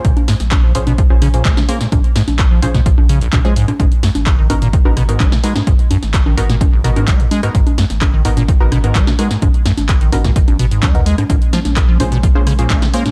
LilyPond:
<<
  \new Staff \with { instrumentName = "Synth stab" } { \time 4/4 \key aes \dorian \tempo 4 = 128 r4. <des' f' aes' c''>16 r8 <des' f' aes' c''>16 r16 <des' f' aes' c''>16 r8 <des' f' aes' c''>16 r16 | r4. <des' f' aes' c''>16 r4. <des' f' aes' c''>16 r8 | r4. <ces' ees' ges' bes'>16 r8 <ces' ees' ges' bes'>16 r16 <ces' ees' ges' bes'>16 r8 <ces' ees' ges' bes'>16 r16 | r4. <ces' ees' ges' bes'>16 r8. <ces' ees' ges' bes'>16 <ces' ees' ges' bes'>16 r8. <ces' ees' ges' bes'>16 |
r4. <ces' ees' ges' bes'>16 r8 <ces' ees' ges' bes'>16 r16 <ces' ees' ges' bes'>16 r8 <ces' ees' ges' bes'>16 r16 | r4. <ces' ees' ges' bes'>16 r4. <ces' ees' ges' bes'>16 r8 | r4. <des' f' aes' c''>16 r8 <des' f' aes' c''>16 r16 <des' f' aes' c''>16 r8 <des' f' aes' c''>16 r16 | }
  \new Staff \with { instrumentName = "Analog synth pad" } { \time 4/4 \key aes \dorian r1 | r1 | r1 | r1 |
r1 | r1 | <aes bes des'>1 | }
  \new Staff \with { instrumentName = "Acid bass" } { \clef bass \time 4/4 \key aes \dorian bes,16 r16 aes,16 r8 f16 bes,16 ces16 f16 bes,,16 des16 bes,16 bes16 bes,16 bes16 bes,16 | bes,16 r16 aes,16 r8 f16 bes,16 ces16 f16 bes,,16 des16 bes,,16 ces16 aes16 aes,16 bes,16 | aes,16 r16 ges,16 r8 ees16 aes,16 bes,16 ees16 aes,,16 ces16 aes,16 aes16 aes,16 aes16 aes,16 | aes,16 r16 ges,16 r8 ees16 aes,16 bes,16 ees16 aes,,16 ces16 aes,16 aes16 aes,16 aes16 aes,16 |
aes,16 r16 ges,16 r8 ees16 aes,16 bes,16 ees16 aes,,16 ces16 aes,16 aes16 aes,16 aes16 aes,16 | aes,16 r16 ges,16 r8 ees16 aes,16 bes,16 ees16 aes,,16 ces16 aes,16 aes16 aes,16 aes16 aes,16 | bes,16 r16 f16 r8 f16 bes,16 ces16 f16 bes,,16 des16 bes,16 bes16 bes,16 bes16 bes,16 | }
  \new Staff \with { instrumentName = "Sub bass" } { \clef bass \time 4/4 \key aes \dorian bes,,16 r8 bes,,8. bes,,8. bes,,8. bes,,16 r8. | bes,,16 r8 bes,,8. bes,,8. bes,,8. bes,,8. r16 | aes,,16 r8 aes,,8. aes,,8. aes,,8. aes,,16 r8. | aes,,16 r8 aes,,8. aes,,8. aes,,8. aes,,16 r8. |
aes,,16 r8 aes,,8. aes,,8. aes,,8. aes,,16 r8. | aes,,16 r8 aes,,8. aes,,8. aes,,8. ees,8. r16 | bes,,16 r8 bes,,8. bes,,8. bes,,8. bes,,16 r8. | }
  \new DrumStaff \with { instrumentName = "Drums" } \drummode { \time 4/4 <hh bd>16 <cgho hh>16 <hho sn>16 <hh sn>16 <hc cgho hh bd ss>8 hho16 <cgho hh>16 <hh bd>8 <cgho hho ss>16 hh16 <hc hh bd>16 <cgho hh sn>16 hho16 <hh sn>16 | <cgho hh bd>16 hh16 <hho sn>16 <cgho hh sn>16 <hc hh bd ss>8 <cgho hho>16 <hh bd sn>16 <hh bd>16 cgho16 hho16 hh16 <hc cgho hh bd>16 hh16 hho16 <cgho hh ss>16 | <cgho hh bd>16 hh16 <hho sn>16 <cgho hh sn>16 <hc hh bd ss>8 <cgho hho>16 hh16 <hh bd>16 cgho16 <hho ss>16 hh16 <hc cgho hh bd>16 <hh sn>16 hho16 <cgho hh sn>16 | <hh bd>16 hh16 <cgho hho>16 <hh sn>16 <hc hh bd ss>16 cgho16 hho16 <hh sn>16 <cgho hh bd>8 hho16 <cgho hh>16 <hc hh bd>16 hh16 <cgho hho>16 <hh ss>16 |
<hh bd>16 <cgho hh>16 <hho sn>16 <hh sn>16 <hc cgho hh bd ss>8 hho16 <cgho hh>16 <hh bd>8 <cgho hho ss>16 hh16 <hc hh bd>16 <cgho hh sn>16 hho16 <hh sn>16 | <cgho hh bd>16 hh16 <hho sn>16 <cgho hh sn>16 <hc hh bd ss>16 hh16 <cgho hho>16 <hh bd sn>16 <hh bd>16 <cgho hh>16 hho16 hh16 <hc cgho hh bd>16 hh16 hho16 <cgho hh ss>16 | <cgho hh bd>16 hh16 <hho sn>16 <cgho hh sn>16 <hc hh bd ss>8 <cgho hho>16 hh16 <hh bd>16 cgho16 <hho ss>16 hh16 <hc cgho hh bd>16 <hh sn>16 hho16 <cgho hh sn>16 | }
>>